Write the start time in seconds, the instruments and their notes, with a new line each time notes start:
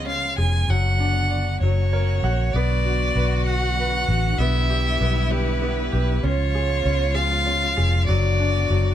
Already playing: fingered electric bass C#2, string section C#3 F3 G#3 B3 F4, grand piano C#4 G#4
0.06 grand piano C#4, violin F5
0.38 fingered electric bass F1, grand piano G#4, violin G#5
0.68 fingered electric bass F#1, string section B2 D3 F#3 D4 F#4, grand piano F#3, violin F#5
1.00 grand piano D4
1.31 grand piano D5
1.60 fingered electric bass F#1, string section A#2 C#3 C#4 F#4, grand piano F#3, violin C#5
1.93 grand piano A#4 C#5
2.23 fingered electric bass A#1, grand piano F#4 F#5
2.53 fingered electric bass B1, string section B2 D3 F#3 D4 F#4, grand piano B3, cello F#4, violin D5
2.86 grand piano F#4
3.15 fingered electric bass B1, grand piano B4
3.46 grand piano F#4, violin F#5
3.80 grand piano B4
4.08 fingered electric bass A1, grand piano F#4
4.38 fingered electric bass B1, string section B2 G3 G4, grand piano B3, cello E4, violin E5
4.70 grand piano G4
5.01 fingered electric bass B1, grand piano B3
5.31 grand piano G4, violin B4
5.62 grand piano B3
5.92 fingered electric bass B1, grand piano G4
6.23 fingered electric bass C#2, string section C#3 F3 G#3 B3 F4, grand piano C#4, cello F4, violin C#5
6.55 grand piano G#4
6.85 fingered electric bass C#2, grand piano C#4
7.15 grand piano G#4, violin F5
7.46 grand piano C#4
7.77 fingered electric bass F1, grand piano G#4
8.07 fingered electric bass F#1, string section B2 D3 F#3 D4 F#4, grand piano F#3, cello F#4, violin D5
8.40 grand piano D4
8.70 fingered electric bass F#1, grand piano F#3